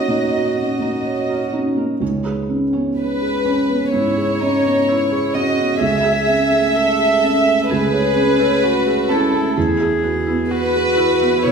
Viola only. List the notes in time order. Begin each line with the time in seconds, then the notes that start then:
Already playing: F#4
3.93 E4
4.40 D#4
4.88 E4
5.34 F#4
5.81 G#4
6.76 A4
7.70 G#4
8.63 F#4
9.11 E4
9.57 G#4
10.50 F#4
11.44 E4